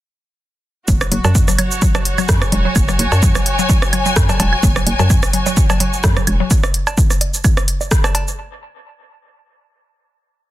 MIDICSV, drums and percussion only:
0, 0, Header, 1, 2, 480
1, 0, Start_track
1, 0, Tempo, 468750
1, 903, Time_signature, 4, 2, 24, 8
1, 10759, End_track
2, 0, Start_track
2, 0, Title_t, "Drums"
2, 903, Note_on_c, 9, 36, 121
2, 903, Note_on_c, 9, 82, 67
2, 1005, Note_off_c, 9, 36, 0
2, 1006, Note_off_c, 9, 82, 0
2, 1035, Note_on_c, 9, 82, 30
2, 1036, Note_on_c, 9, 37, 85
2, 1036, Note_on_c, 9, 76, 67
2, 1137, Note_off_c, 9, 82, 0
2, 1138, Note_off_c, 9, 37, 0
2, 1138, Note_off_c, 9, 76, 0
2, 1143, Note_on_c, 9, 46, 97
2, 1245, Note_off_c, 9, 46, 0
2, 1275, Note_on_c, 9, 56, 84
2, 1275, Note_on_c, 9, 82, 30
2, 1377, Note_off_c, 9, 82, 0
2, 1378, Note_off_c, 9, 56, 0
2, 1383, Note_on_c, 9, 36, 116
2, 1383, Note_on_c, 9, 82, 65
2, 1384, Note_on_c, 9, 77, 43
2, 1485, Note_off_c, 9, 36, 0
2, 1486, Note_off_c, 9, 77, 0
2, 1486, Note_off_c, 9, 82, 0
2, 1515, Note_on_c, 9, 37, 41
2, 1515, Note_on_c, 9, 82, 46
2, 1617, Note_off_c, 9, 82, 0
2, 1618, Note_off_c, 9, 37, 0
2, 1623, Note_on_c, 9, 46, 90
2, 1623, Note_on_c, 9, 76, 65
2, 1726, Note_off_c, 9, 46, 0
2, 1726, Note_off_c, 9, 76, 0
2, 1755, Note_on_c, 9, 82, 42
2, 1857, Note_off_c, 9, 82, 0
2, 1863, Note_on_c, 9, 36, 118
2, 1863, Note_on_c, 9, 82, 64
2, 1965, Note_off_c, 9, 36, 0
2, 1966, Note_off_c, 9, 82, 0
2, 1995, Note_on_c, 9, 37, 84
2, 1995, Note_on_c, 9, 56, 84
2, 1995, Note_on_c, 9, 77, 44
2, 1995, Note_on_c, 9, 82, 31
2, 2098, Note_off_c, 9, 37, 0
2, 2098, Note_off_c, 9, 56, 0
2, 2098, Note_off_c, 9, 77, 0
2, 2098, Note_off_c, 9, 82, 0
2, 2103, Note_on_c, 9, 46, 94
2, 2206, Note_off_c, 9, 46, 0
2, 2235, Note_on_c, 9, 76, 68
2, 2235, Note_on_c, 9, 82, 29
2, 2337, Note_off_c, 9, 82, 0
2, 2338, Note_off_c, 9, 76, 0
2, 2343, Note_on_c, 9, 36, 118
2, 2343, Note_on_c, 9, 37, 110
2, 2343, Note_on_c, 9, 82, 65
2, 2445, Note_off_c, 9, 37, 0
2, 2445, Note_off_c, 9, 82, 0
2, 2446, Note_off_c, 9, 36, 0
2, 2475, Note_on_c, 9, 37, 80
2, 2475, Note_on_c, 9, 82, 31
2, 2577, Note_off_c, 9, 37, 0
2, 2577, Note_off_c, 9, 82, 0
2, 2583, Note_on_c, 9, 46, 93
2, 2583, Note_on_c, 9, 77, 45
2, 2686, Note_off_c, 9, 46, 0
2, 2686, Note_off_c, 9, 77, 0
2, 2823, Note_on_c, 9, 36, 125
2, 2823, Note_on_c, 9, 76, 62
2, 2823, Note_on_c, 9, 82, 64
2, 2926, Note_off_c, 9, 36, 0
2, 2926, Note_off_c, 9, 76, 0
2, 2926, Note_off_c, 9, 82, 0
2, 2955, Note_on_c, 9, 37, 42
2, 2955, Note_on_c, 9, 82, 30
2, 3057, Note_off_c, 9, 37, 0
2, 3058, Note_off_c, 9, 82, 0
2, 3063, Note_on_c, 9, 46, 98
2, 3166, Note_off_c, 9, 46, 0
2, 3195, Note_on_c, 9, 56, 87
2, 3195, Note_on_c, 9, 77, 46
2, 3195, Note_on_c, 9, 82, 31
2, 3297, Note_off_c, 9, 56, 0
2, 3297, Note_off_c, 9, 77, 0
2, 3298, Note_off_c, 9, 82, 0
2, 3303, Note_on_c, 9, 36, 119
2, 3303, Note_on_c, 9, 82, 66
2, 3406, Note_off_c, 9, 36, 0
2, 3406, Note_off_c, 9, 82, 0
2, 3434, Note_on_c, 9, 37, 81
2, 3434, Note_on_c, 9, 76, 62
2, 3435, Note_on_c, 9, 82, 45
2, 3537, Note_off_c, 9, 37, 0
2, 3537, Note_off_c, 9, 76, 0
2, 3538, Note_off_c, 9, 82, 0
2, 3543, Note_on_c, 9, 46, 96
2, 3645, Note_off_c, 9, 46, 0
2, 3675, Note_on_c, 9, 82, 42
2, 3778, Note_off_c, 9, 82, 0
2, 3783, Note_on_c, 9, 36, 121
2, 3783, Note_on_c, 9, 77, 46
2, 3783, Note_on_c, 9, 82, 61
2, 3885, Note_off_c, 9, 36, 0
2, 3885, Note_off_c, 9, 77, 0
2, 3885, Note_off_c, 9, 82, 0
2, 3915, Note_on_c, 9, 37, 82
2, 3915, Note_on_c, 9, 82, 31
2, 4017, Note_off_c, 9, 37, 0
2, 4018, Note_off_c, 9, 82, 0
2, 4023, Note_on_c, 9, 46, 95
2, 4023, Note_on_c, 9, 76, 64
2, 4125, Note_off_c, 9, 76, 0
2, 4126, Note_off_c, 9, 46, 0
2, 4155, Note_on_c, 9, 82, 29
2, 4257, Note_off_c, 9, 82, 0
2, 4263, Note_on_c, 9, 36, 122
2, 4263, Note_on_c, 9, 37, 113
2, 4263, Note_on_c, 9, 82, 65
2, 4365, Note_off_c, 9, 36, 0
2, 4365, Note_off_c, 9, 37, 0
2, 4365, Note_off_c, 9, 82, 0
2, 4395, Note_on_c, 9, 82, 30
2, 4396, Note_on_c, 9, 37, 39
2, 4396, Note_on_c, 9, 56, 94
2, 4396, Note_on_c, 9, 77, 45
2, 4497, Note_off_c, 9, 82, 0
2, 4498, Note_off_c, 9, 37, 0
2, 4498, Note_off_c, 9, 56, 0
2, 4498, Note_off_c, 9, 77, 0
2, 4503, Note_on_c, 9, 46, 97
2, 4503, Note_on_c, 9, 56, 83
2, 4605, Note_off_c, 9, 56, 0
2, 4606, Note_off_c, 9, 46, 0
2, 4635, Note_on_c, 9, 76, 65
2, 4737, Note_off_c, 9, 76, 0
2, 4743, Note_on_c, 9, 36, 127
2, 4743, Note_on_c, 9, 82, 63
2, 4845, Note_off_c, 9, 36, 0
2, 4845, Note_off_c, 9, 82, 0
2, 4875, Note_on_c, 9, 37, 78
2, 4875, Note_on_c, 9, 82, 28
2, 4977, Note_off_c, 9, 37, 0
2, 4977, Note_off_c, 9, 82, 0
2, 4982, Note_on_c, 9, 77, 47
2, 4983, Note_on_c, 9, 46, 103
2, 5085, Note_off_c, 9, 46, 0
2, 5085, Note_off_c, 9, 77, 0
2, 5114, Note_on_c, 9, 56, 83
2, 5114, Note_on_c, 9, 82, 29
2, 5217, Note_off_c, 9, 56, 0
2, 5217, Note_off_c, 9, 82, 0
2, 5222, Note_on_c, 9, 76, 60
2, 5223, Note_on_c, 9, 36, 126
2, 5223, Note_on_c, 9, 82, 64
2, 5325, Note_off_c, 9, 36, 0
2, 5325, Note_off_c, 9, 76, 0
2, 5325, Note_off_c, 9, 82, 0
2, 5354, Note_on_c, 9, 82, 43
2, 5355, Note_on_c, 9, 37, 77
2, 5457, Note_off_c, 9, 37, 0
2, 5457, Note_off_c, 9, 82, 0
2, 5463, Note_on_c, 9, 46, 99
2, 5565, Note_off_c, 9, 46, 0
2, 5594, Note_on_c, 9, 77, 47
2, 5594, Note_on_c, 9, 82, 41
2, 5697, Note_off_c, 9, 77, 0
2, 5697, Note_off_c, 9, 82, 0
2, 5703, Note_on_c, 9, 36, 126
2, 5703, Note_on_c, 9, 82, 61
2, 5805, Note_off_c, 9, 36, 0
2, 5805, Note_off_c, 9, 82, 0
2, 5834, Note_on_c, 9, 82, 29
2, 5835, Note_on_c, 9, 37, 40
2, 5835, Note_on_c, 9, 56, 83
2, 5835, Note_on_c, 9, 76, 64
2, 5937, Note_off_c, 9, 37, 0
2, 5937, Note_off_c, 9, 56, 0
2, 5937, Note_off_c, 9, 76, 0
2, 5937, Note_off_c, 9, 82, 0
2, 5942, Note_on_c, 9, 46, 98
2, 6044, Note_off_c, 9, 46, 0
2, 6074, Note_on_c, 9, 82, 28
2, 6177, Note_off_c, 9, 82, 0
2, 6182, Note_on_c, 9, 37, 109
2, 6182, Note_on_c, 9, 77, 47
2, 6182, Note_on_c, 9, 82, 59
2, 6183, Note_on_c, 9, 36, 127
2, 6284, Note_off_c, 9, 37, 0
2, 6284, Note_off_c, 9, 82, 0
2, 6285, Note_off_c, 9, 36, 0
2, 6285, Note_off_c, 9, 77, 0
2, 6314, Note_on_c, 9, 37, 74
2, 6314, Note_on_c, 9, 82, 29
2, 6417, Note_off_c, 9, 37, 0
2, 6417, Note_off_c, 9, 82, 0
2, 6422, Note_on_c, 9, 46, 99
2, 6423, Note_on_c, 9, 76, 65
2, 6525, Note_off_c, 9, 46, 0
2, 6525, Note_off_c, 9, 76, 0
2, 6663, Note_on_c, 9, 36, 124
2, 6663, Note_on_c, 9, 82, 62
2, 6765, Note_off_c, 9, 36, 0
2, 6765, Note_off_c, 9, 82, 0
2, 6795, Note_on_c, 9, 37, 79
2, 6795, Note_on_c, 9, 77, 49
2, 6795, Note_on_c, 9, 82, 29
2, 6897, Note_off_c, 9, 37, 0
2, 6897, Note_off_c, 9, 77, 0
2, 6897, Note_off_c, 9, 82, 0
2, 6903, Note_on_c, 9, 46, 102
2, 7005, Note_off_c, 9, 46, 0
2, 7035, Note_on_c, 9, 56, 80
2, 7035, Note_on_c, 9, 76, 67
2, 7035, Note_on_c, 9, 82, 29
2, 7137, Note_off_c, 9, 56, 0
2, 7137, Note_off_c, 9, 76, 0
2, 7138, Note_off_c, 9, 82, 0
2, 7143, Note_on_c, 9, 36, 124
2, 7143, Note_on_c, 9, 82, 60
2, 7246, Note_off_c, 9, 36, 0
2, 7246, Note_off_c, 9, 82, 0
2, 7275, Note_on_c, 9, 37, 38
2, 7275, Note_on_c, 9, 82, 42
2, 7377, Note_off_c, 9, 37, 0
2, 7378, Note_off_c, 9, 82, 0
2, 7383, Note_on_c, 9, 46, 97
2, 7383, Note_on_c, 9, 77, 47
2, 7486, Note_off_c, 9, 46, 0
2, 7486, Note_off_c, 9, 77, 0
2, 7515, Note_on_c, 9, 82, 40
2, 7618, Note_off_c, 9, 82, 0
2, 7623, Note_on_c, 9, 36, 124
2, 7623, Note_on_c, 9, 76, 64
2, 7623, Note_on_c, 9, 82, 59
2, 7725, Note_off_c, 9, 76, 0
2, 7726, Note_off_c, 9, 36, 0
2, 7726, Note_off_c, 9, 82, 0
2, 7755, Note_on_c, 9, 37, 76
2, 7756, Note_on_c, 9, 82, 29
2, 7857, Note_off_c, 9, 37, 0
2, 7858, Note_off_c, 9, 82, 0
2, 7864, Note_on_c, 9, 46, 97
2, 7966, Note_off_c, 9, 46, 0
2, 7995, Note_on_c, 9, 77, 48
2, 7995, Note_on_c, 9, 82, 27
2, 8097, Note_off_c, 9, 77, 0
2, 8098, Note_off_c, 9, 82, 0
2, 8103, Note_on_c, 9, 36, 124
2, 8104, Note_on_c, 9, 37, 104
2, 8104, Note_on_c, 9, 82, 61
2, 8206, Note_off_c, 9, 36, 0
2, 8206, Note_off_c, 9, 37, 0
2, 8206, Note_off_c, 9, 82, 0
2, 8234, Note_on_c, 9, 37, 73
2, 8234, Note_on_c, 9, 56, 94
2, 8234, Note_on_c, 9, 76, 65
2, 8236, Note_on_c, 9, 82, 29
2, 8337, Note_off_c, 9, 37, 0
2, 8337, Note_off_c, 9, 56, 0
2, 8337, Note_off_c, 9, 76, 0
2, 8338, Note_off_c, 9, 82, 0
2, 8343, Note_on_c, 9, 56, 78
2, 8344, Note_on_c, 9, 46, 98
2, 8445, Note_off_c, 9, 56, 0
2, 8446, Note_off_c, 9, 46, 0
2, 8476, Note_on_c, 9, 82, 28
2, 8578, Note_off_c, 9, 82, 0
2, 10759, End_track
0, 0, End_of_file